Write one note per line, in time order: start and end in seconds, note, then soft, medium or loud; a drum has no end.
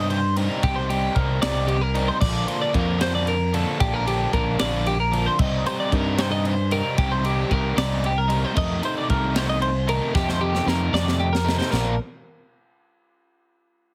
0.00 0.47 G2 medium
0.00 0.18 C3 medium
0.00 0.18 G3 medium
0.00 0.18 C4 loud
0.00 0.18 D#4 loud
0.10 0.36 C5 medium
0.10 ride medium
0.36 0.61 C3 medium
0.36 0.62 G3 medium
0.36 0.62 C4 medium
0.36 0.63 D#4 medium
0.36 0.63 A#4 medium
0.36 ride medium
0.62 1.08 C2 medium
0.62 0.89 C3 medium
0.62 0.89 G3 medium
0.62 0.89 C4 loud
0.62 0.89 D#4 medium
0.62 0.77 G4 loud
0.62 kick loud
0.62 ride loud
0.76 0.89 C5 medium
0.89 1.14 C3 medium
0.89 1.15 G3 medium
0.89 1.15 C4 medium
0.89 1.15 D#4 medium
0.89 1.16 G4 medium
0.89 ride medium
1.15 1.38 C2 loud
1.15 1.42 C3 medium
1.15 1.42 G3 medium
1.15 1.41 C4 medium
1.15 1.41 D#4 medium
1.15 1.41 A#4 medium
1.15 kick medium
1.15 ride medium
1.42 2.09 C2 medium
1.42 1.77 C3 medium
1.42 1.77 G3 medium
1.42 1.77 C4 medium
1.42 1.76 D#4 medium
1.42 1.69 D5 loud
1.42 snare loud
1.42 ride loud
1.67 1.81 G4 medium
1.67 ride medium
1.81 2.08 A#4 medium
1.95 2.21 C3 medium
1.95 2.21 G3 medium
1.95 2.21 C4 medium
1.95 2.21 D#4 medium
1.95 ride medium
2.08 2.20 C5 medium
2.21 2.44 A#1 medium
2.21 2.48 D3 medium
2.21 2.47 F3 medium
2.21 2.47 A#3 medium
2.21 2.46 D4 medium
2.21 2.48 D5 loud
2.21 kick loud
2.21 crash loud
2.47 2.73 D3 medium
2.47 2.73 F3 medium
2.47 2.74 A#3 medium
2.47 2.74 D4 loud
2.47 2.61 C5 medium
2.47 ride medium
2.62 2.75 D5 medium
2.74 3.64 F2 loud
2.74 2.99 D3 medium
2.74 3.00 F3 medium
2.74 2.99 A#3 medium
2.74 2.98 D4 medium
2.74 3.01 A#4 medium
2.74 kick medium
2.74 ride medium
3.00 3.35 D3 medium
3.00 3.35 F3 medium
3.00 3.35 A#3 medium
3.00 3.35 D4 medium
3.00 3.15 C5 loud
3.00 snare loud
3.00 ride loud
3.15 3.28 D5 medium
3.27 3.55 A#4 medium
3.27 ride medium
3.54 3.79 D3 medium
3.54 3.79 F3 medium
3.54 3.80 A#3 medium
3.54 3.80 D4 medium
3.54 3.80 A4 medium
3.54 ride medium
3.80 4.25 A#1 loud
3.80 4.07 D3 medium
3.80 4.06 F3 medium
3.80 4.06 A#3 loud
3.80 4.05 D4 medium
3.80 3.94 G4 loud
3.80 kick loud
3.80 ride loud
3.94 4.07 A#4 medium
4.06 4.31 D3 medium
4.06 4.32 F3 medium
4.06 4.32 A#3 medium
4.06 4.33 D4 medium
4.06 4.33 G4 medium
4.06 ride medium
4.33 4.56 A#1 medium
4.33 4.59 D3 medium
4.33 4.58 F3 medium
4.33 4.58 A#3 medium
4.33 4.57 D4 medium
4.33 4.60 A#4 medium
4.33 kick medium
4.33 ride medium
4.59 5.27 A#1 medium
4.59 4.94 D3 medium
4.59 4.94 F3 medium
4.59 4.94 A#3 loud
4.59 4.93 D4 loud
4.59 4.86 D5 loud
4.59 snare loud
4.59 ride loud
4.86 5.00 G4 medium
4.86 ride medium
5.00 5.26 A#4 medium
5.12 5.39 D3 medium
5.12 5.39 F3 medium
5.12 5.39 A#3 medium
5.12 5.38 D4 medium
5.12 ride medium
5.26 5.39 C5 medium
5.39 5.61 C2 loud
5.39 5.66 C3 medium
5.39 5.66 G3 loud
5.39 5.65 C4 medium
5.39 5.65 D#4 medium
5.39 5.65 D#5 medium
5.39 kick loud
5.39 crash loud
5.66 5.91 C3 medium
5.66 5.91 G3 medium
5.66 5.92 C4 medium
5.66 5.92 D#4 medium
5.66 5.79 C5 medium
5.66 ride medium
5.80 5.93 D5 medium
5.92 6.81 G2 medium
5.92 6.18 C3 medium
5.92 6.18 G3 medium
5.92 6.17 C4 medium
5.92 6.17 D#4 medium
5.92 6.19 A#4 medium
5.92 kick medium
5.92 ride medium
6.18 6.53 C3 medium
6.18 6.53 G3 medium
6.18 6.53 C4 medium
6.18 6.52 D#4 loud
6.18 6.31 C5 loud
6.18 snare loud
6.18 ride loud
6.32 6.46 D#5 medium
6.45 6.72 C5 medium
6.45 ride medium
6.71 6.97 C3 medium
6.71 6.97 G3 medium
6.71 6.98 C4 medium
6.71 6.98 D#4 loud
6.71 6.98 A#4 medium
6.71 ride medium
6.98 7.42 C2 loud
6.98 7.24 C3 medium
6.98 7.23 G3 medium
6.98 7.23 C4 medium
6.98 7.22 D#4 medium
6.98 7.11 G4 medium
6.98 kick loud
6.98 ride loud
7.12 7.24 C5 medium
7.23 7.49 C3 medium
7.23 7.49 G3 medium
7.23 7.50 C4 medium
7.23 7.50 D#4 medium
7.23 7.51 G4 medium
7.23 ride medium
7.50 7.73 C2 loud
7.50 7.76 C3 medium
7.50 7.75 G3 medium
7.50 7.75 C4 medium
7.50 7.75 D#4 medium
7.50 7.77 A#4 medium
7.50 kick medium
7.50 ride medium
7.76 8.44 C2 medium
7.76 8.11 C3 medium
7.76 8.11 G3 medium
7.76 8.11 C4 medium
7.76 8.11 D#4 loud
7.76 8.04 D5 loud
7.76 snare loud
7.76 ride loud
8.04 8.18 G4 medium
8.04 ride medium
8.18 8.45 A#4 medium
8.28 8.53 C3 medium
8.28 8.55 G3 medium
8.28 8.55 C4 medium
8.28 8.55 D#4 medium
8.28 ride medium
8.45 8.57 C5 medium
8.54 8.79 F2 medium
8.54 8.82 C3 medium
8.54 8.82 D#3 medium
8.54 8.82 A3 medium
8.54 8.81 D#4 medium
8.54 8.83 D#5 loud
8.54 kick loud
8.54 crash loud
8.82 9.07 C3 medium
8.82 9.08 D#3 medium
8.82 9.08 A3 medium
8.82 9.08 D#4 medium
8.82 8.97 C5 medium
8.82 ride medium
8.98 9.10 D5 medium
9.09 9.99 C2 medium
9.09 9.35 C3 medium
9.09 9.34 D#3 medium
9.09 9.34 A3 medium
9.09 9.33 D#4 medium
9.09 9.37 A#4 medium
9.09 kick medium
9.09 ride medium
9.34 9.70 C3 medium
9.34 9.70 D#3 medium
9.34 9.70 A3 loud
9.34 9.69 D#4 loud
9.34 9.49 C5 loud
9.34 snare loud
9.34 ride loud
9.50 9.61 D#5 medium
9.62 9.88 C5 medium
9.62 ride medium
9.87 10.12 C3 medium
9.87 10.12 D#3 medium
9.87 10.13 A3 medium
9.87 10.13 D#4 medium
9.87 10.15 A#4 medium
9.87 ride medium
10.13 10.59 F2 medium
10.13 10.40 C3 medium
10.13 10.40 D#3 medium
10.13 10.40 A3 medium
10.13 10.39 D#4 medium
10.13 10.28 G4 loud
10.13 kick loud
10.13 snare medium
10.29 10.42 C5 medium
10.29 snare medium
10.40 10.64 C3 medium
10.40 10.65 D#3 medium
10.40 10.65 A3 medium
10.40 10.66 D#4 medium
10.40 10.68 G4 medium
10.55 snare medium
10.66 10.89 F2 medium
10.66 10.93 C3 medium
10.66 10.93 D#3 medium
10.66 10.92 A3 medium
10.66 10.92 D#4 medium
10.66 10.94 A#4 medium
10.66 snare medium
10.93 11.60 F2 medium
10.93 11.28 C3 medium
10.93 11.28 D#3 medium
10.93 11.28 A3 medium
10.93 11.28 D#4 medium
10.93 11.20 D5 loud
10.93 snare loud
11.08 snare medium
11.20 11.33 G4 medium
11.33 11.58 A#4 medium
11.33 snare medium
11.45 11.71 C3 medium
11.45 11.72 D#3 medium
11.45 11.72 A3 medium
11.45 11.72 D#4 medium
11.45 snare loud
11.59 11.71 C5 medium
11.59 snare loud
11.71 11.97 A#1 medium
11.71 11.93 A#2 medium
11.71 11.93 F3 medium
11.71 11.94 A#3 medium
11.71 11.94 D4 loud
11.71 11.98 A#4 medium
11.71 snare loud
11.71 splash medium